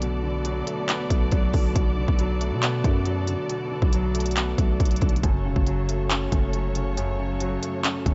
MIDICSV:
0, 0, Header, 1, 5, 480
1, 0, Start_track
1, 0, Key_signature, 2, "minor"
1, 0, Tempo, 434783
1, 19, Time_signature, 4, 2, 24, 8
1, 8989, End_track
2, 0, Start_track
2, 0, Title_t, "String section"
2, 0, Program_c, 0, 48
2, 0, Note_on_c, 0, 59, 81
2, 0, Note_on_c, 0, 66, 75
2, 0, Note_on_c, 0, 69, 74
2, 0, Note_on_c, 0, 74, 89
2, 5735, Note_off_c, 0, 59, 0
2, 5735, Note_off_c, 0, 74, 0
2, 5779, Note_on_c, 0, 54, 80
2, 5779, Note_on_c, 0, 73, 91
2, 8989, Note_off_c, 0, 54, 0
2, 8989, Note_off_c, 0, 66, 0
2, 8989, Note_off_c, 0, 69, 0
2, 8989, Note_off_c, 0, 73, 0
2, 8989, End_track
3, 0, Start_track
3, 0, Title_t, "Grand piano"
3, 0, Program_c, 1, 0
3, 0, Control_c, 1, 64, 127
3, 0, Note_on_c, 1, 47, 99
3, 0, Note_on_c, 1, 50, 75
3, 0, Note_on_c, 1, 54, 81
3, 0, Note_on_c, 1, 57, 83
3, 0, Note_on_c, 1, 59, 91
3, 21, Note_off_c, 1, 47, 0
3, 21, Note_on_c, 1, 47, 95
3, 236, Note_off_c, 1, 50, 0
3, 253, Note_on_c, 1, 50, 79
3, 260, Note_off_c, 1, 59, 0
3, 483, Note_off_c, 1, 54, 0
3, 499, Note_off_c, 1, 57, 0
3, 499, Note_on_c, 1, 54, 93
3, 738, Note_on_c, 1, 57, 86
3, 980, Note_on_c, 1, 59, 97
3, 1202, Note_off_c, 1, 57, 0
3, 1218, Note_on_c, 1, 57, 87
3, 1220, Note_off_c, 1, 47, 0
3, 1442, Note_off_c, 1, 54, 0
3, 1456, Note_off_c, 1, 50, 0
3, 1458, Note_on_c, 1, 54, 90
3, 1698, Note_on_c, 1, 50, 74
3, 1938, Note_on_c, 1, 47, 92
3, 2160, Note_off_c, 1, 50, 0
3, 2176, Note_on_c, 1, 50, 75
3, 2179, Note_off_c, 1, 59, 0
3, 2402, Note_off_c, 1, 54, 0
3, 2418, Note_off_c, 1, 57, 0
3, 2419, Note_on_c, 1, 54, 97
3, 2656, Note_on_c, 1, 57, 86
3, 2900, Note_on_c, 1, 59, 101
3, 3120, Note_off_c, 1, 57, 0
3, 3137, Note_on_c, 1, 57, 85
3, 3138, Note_off_c, 1, 47, 0
3, 3358, Note_off_c, 1, 54, 0
3, 3374, Note_on_c, 1, 54, 89
3, 3377, Note_off_c, 1, 50, 0
3, 3619, Note_on_c, 1, 50, 82
3, 3858, Note_on_c, 1, 47, 96
3, 4083, Note_off_c, 1, 50, 0
3, 4099, Note_off_c, 1, 59, 0
3, 4099, Note_on_c, 1, 50, 82
3, 4321, Note_off_c, 1, 54, 0
3, 4338, Note_off_c, 1, 57, 0
3, 4338, Note_on_c, 1, 54, 99
3, 4578, Note_on_c, 1, 57, 85
3, 4820, Note_on_c, 1, 59, 91
3, 5044, Note_off_c, 1, 57, 0
3, 5058, Note_off_c, 1, 47, 0
3, 5060, Note_on_c, 1, 57, 79
3, 5281, Note_off_c, 1, 54, 0
3, 5297, Note_on_c, 1, 54, 85
3, 5299, Note_off_c, 1, 50, 0
3, 5538, Note_on_c, 1, 50, 80
3, 5778, Note_off_c, 1, 50, 0
3, 5778, Note_off_c, 1, 54, 0
3, 5779, Note_off_c, 1, 57, 0
3, 5779, Note_off_c, 1, 59, 0
3, 5781, Note_on_c, 1, 42, 90
3, 5794, Control_c, 1, 64, 0
3, 5970, Control_c, 1, 64, 127
3, 6018, Note_on_c, 1, 49, 84
3, 6258, Note_on_c, 1, 54, 96
3, 6499, Note_on_c, 1, 57, 81
3, 6740, Note_on_c, 1, 61, 100
3, 6959, Note_off_c, 1, 57, 0
3, 6976, Note_on_c, 1, 57, 86
3, 6980, Note_off_c, 1, 42, 0
3, 7204, Note_off_c, 1, 54, 0
3, 7218, Note_off_c, 1, 49, 0
3, 7221, Note_on_c, 1, 54, 82
3, 7459, Note_on_c, 1, 49, 81
3, 7698, Note_on_c, 1, 42, 96
3, 7922, Note_off_c, 1, 49, 0
3, 7938, Note_on_c, 1, 49, 80
3, 7939, Note_off_c, 1, 61, 0
3, 8161, Note_off_c, 1, 54, 0
3, 8177, Note_off_c, 1, 57, 0
3, 8178, Note_on_c, 1, 54, 94
3, 8421, Note_on_c, 1, 57, 78
3, 8659, Note_on_c, 1, 61, 92
3, 8884, Note_off_c, 1, 57, 0
3, 8898, Note_off_c, 1, 42, 0
3, 8900, Note_on_c, 1, 57, 84
3, 8989, Note_off_c, 1, 49, 0
3, 8989, Note_off_c, 1, 54, 0
3, 8989, Note_off_c, 1, 57, 0
3, 8989, Note_off_c, 1, 61, 0
3, 8989, End_track
4, 0, Start_track
4, 0, Title_t, "808-style bass"
4, 0, Program_c, 2, 38
4, 0, Note_on_c, 2, 35, 104
4, 695, Note_off_c, 2, 35, 0
4, 1218, Note_on_c, 2, 35, 104
4, 1449, Note_off_c, 2, 35, 0
4, 1459, Note_on_c, 2, 35, 104
4, 1689, Note_off_c, 2, 35, 0
4, 1698, Note_on_c, 2, 35, 103
4, 1929, Note_off_c, 2, 35, 0
4, 1938, Note_on_c, 2, 35, 114
4, 2284, Note_off_c, 2, 35, 0
4, 2298, Note_on_c, 2, 35, 110
4, 2779, Note_on_c, 2, 47, 99
4, 2795, Note_off_c, 2, 35, 0
4, 3121, Note_off_c, 2, 47, 0
4, 3138, Note_on_c, 2, 42, 106
4, 3714, Note_off_c, 2, 42, 0
4, 4218, Note_on_c, 2, 35, 104
4, 5025, Note_off_c, 2, 35, 0
4, 5059, Note_on_c, 2, 35, 103
4, 5289, Note_off_c, 2, 35, 0
4, 5299, Note_on_c, 2, 35, 104
4, 5529, Note_off_c, 2, 35, 0
4, 5539, Note_on_c, 2, 35, 104
4, 5769, Note_off_c, 2, 35, 0
4, 5779, Note_on_c, 2, 30, 105
4, 6019, Note_on_c, 2, 28, 100
4, 6036, Note_off_c, 2, 30, 0
4, 6133, Note_off_c, 2, 28, 0
4, 6138, Note_on_c, 2, 30, 103
4, 6945, Note_off_c, 2, 30, 0
4, 6979, Note_on_c, 2, 30, 106
4, 8374, Note_off_c, 2, 30, 0
4, 8898, Note_on_c, 2, 30, 107
4, 8989, Note_off_c, 2, 30, 0
4, 8989, End_track
5, 0, Start_track
5, 0, Title_t, "Drums"
5, 19, Note_on_c, 9, 42, 81
5, 130, Note_off_c, 9, 42, 0
5, 495, Note_on_c, 9, 42, 76
5, 606, Note_off_c, 9, 42, 0
5, 741, Note_on_c, 9, 42, 84
5, 851, Note_off_c, 9, 42, 0
5, 980, Note_on_c, 9, 39, 116
5, 980, Note_on_c, 9, 42, 82
5, 1091, Note_off_c, 9, 39, 0
5, 1091, Note_off_c, 9, 42, 0
5, 1218, Note_on_c, 9, 36, 101
5, 1220, Note_on_c, 9, 42, 82
5, 1329, Note_off_c, 9, 36, 0
5, 1330, Note_off_c, 9, 42, 0
5, 1452, Note_on_c, 9, 42, 68
5, 1459, Note_on_c, 9, 36, 96
5, 1562, Note_off_c, 9, 42, 0
5, 1569, Note_off_c, 9, 36, 0
5, 1694, Note_on_c, 9, 46, 66
5, 1699, Note_on_c, 9, 36, 94
5, 1805, Note_off_c, 9, 46, 0
5, 1809, Note_off_c, 9, 36, 0
5, 1938, Note_on_c, 9, 36, 116
5, 1939, Note_on_c, 9, 42, 79
5, 2049, Note_off_c, 9, 36, 0
5, 2049, Note_off_c, 9, 42, 0
5, 2298, Note_on_c, 9, 36, 93
5, 2408, Note_off_c, 9, 36, 0
5, 2414, Note_on_c, 9, 42, 76
5, 2525, Note_off_c, 9, 42, 0
5, 2660, Note_on_c, 9, 42, 82
5, 2770, Note_off_c, 9, 42, 0
5, 2900, Note_on_c, 9, 39, 114
5, 2900, Note_on_c, 9, 42, 81
5, 3010, Note_off_c, 9, 39, 0
5, 3010, Note_off_c, 9, 42, 0
5, 3139, Note_on_c, 9, 36, 102
5, 3140, Note_on_c, 9, 42, 73
5, 3249, Note_off_c, 9, 36, 0
5, 3250, Note_off_c, 9, 42, 0
5, 3373, Note_on_c, 9, 42, 67
5, 3483, Note_off_c, 9, 42, 0
5, 3614, Note_on_c, 9, 42, 68
5, 3725, Note_off_c, 9, 42, 0
5, 3859, Note_on_c, 9, 42, 79
5, 3969, Note_off_c, 9, 42, 0
5, 4218, Note_on_c, 9, 36, 94
5, 4328, Note_off_c, 9, 36, 0
5, 4335, Note_on_c, 9, 42, 74
5, 4445, Note_off_c, 9, 42, 0
5, 4579, Note_on_c, 9, 42, 85
5, 4639, Note_off_c, 9, 42, 0
5, 4639, Note_on_c, 9, 42, 71
5, 4699, Note_off_c, 9, 42, 0
5, 4699, Note_on_c, 9, 42, 65
5, 4759, Note_off_c, 9, 42, 0
5, 4759, Note_on_c, 9, 42, 50
5, 4820, Note_off_c, 9, 42, 0
5, 4820, Note_on_c, 9, 39, 116
5, 4820, Note_on_c, 9, 42, 82
5, 4930, Note_off_c, 9, 39, 0
5, 4930, Note_off_c, 9, 42, 0
5, 5059, Note_on_c, 9, 36, 101
5, 5059, Note_on_c, 9, 42, 83
5, 5169, Note_off_c, 9, 36, 0
5, 5170, Note_off_c, 9, 42, 0
5, 5299, Note_on_c, 9, 36, 98
5, 5299, Note_on_c, 9, 42, 57
5, 5359, Note_off_c, 9, 42, 0
5, 5359, Note_on_c, 9, 42, 58
5, 5409, Note_off_c, 9, 36, 0
5, 5419, Note_off_c, 9, 42, 0
5, 5419, Note_on_c, 9, 42, 55
5, 5479, Note_off_c, 9, 42, 0
5, 5479, Note_on_c, 9, 42, 58
5, 5534, Note_on_c, 9, 46, 67
5, 5539, Note_off_c, 9, 42, 0
5, 5539, Note_on_c, 9, 36, 93
5, 5539, Note_on_c, 9, 42, 38
5, 5619, Note_off_c, 9, 42, 0
5, 5619, Note_on_c, 9, 42, 50
5, 5645, Note_off_c, 9, 46, 0
5, 5649, Note_off_c, 9, 36, 0
5, 5699, Note_off_c, 9, 42, 0
5, 5699, Note_on_c, 9, 42, 64
5, 5779, Note_off_c, 9, 42, 0
5, 5779, Note_on_c, 9, 36, 115
5, 5779, Note_on_c, 9, 42, 78
5, 5889, Note_off_c, 9, 36, 0
5, 5890, Note_off_c, 9, 42, 0
5, 6138, Note_on_c, 9, 36, 96
5, 6249, Note_off_c, 9, 36, 0
5, 6255, Note_on_c, 9, 42, 74
5, 6365, Note_off_c, 9, 42, 0
5, 6500, Note_on_c, 9, 42, 82
5, 6611, Note_off_c, 9, 42, 0
5, 6740, Note_on_c, 9, 39, 120
5, 6740, Note_on_c, 9, 42, 82
5, 6850, Note_off_c, 9, 39, 0
5, 6850, Note_off_c, 9, 42, 0
5, 6979, Note_on_c, 9, 36, 99
5, 6979, Note_on_c, 9, 42, 76
5, 7089, Note_off_c, 9, 36, 0
5, 7090, Note_off_c, 9, 42, 0
5, 7213, Note_on_c, 9, 42, 66
5, 7323, Note_off_c, 9, 42, 0
5, 7454, Note_on_c, 9, 42, 70
5, 7564, Note_off_c, 9, 42, 0
5, 7699, Note_on_c, 9, 42, 76
5, 7809, Note_off_c, 9, 42, 0
5, 8174, Note_on_c, 9, 42, 73
5, 8285, Note_off_c, 9, 42, 0
5, 8420, Note_on_c, 9, 42, 83
5, 8530, Note_off_c, 9, 42, 0
5, 8659, Note_on_c, 9, 39, 117
5, 8659, Note_on_c, 9, 42, 83
5, 8770, Note_off_c, 9, 39, 0
5, 8770, Note_off_c, 9, 42, 0
5, 8898, Note_on_c, 9, 36, 98
5, 8899, Note_on_c, 9, 42, 80
5, 8989, Note_off_c, 9, 36, 0
5, 8989, Note_off_c, 9, 42, 0
5, 8989, End_track
0, 0, End_of_file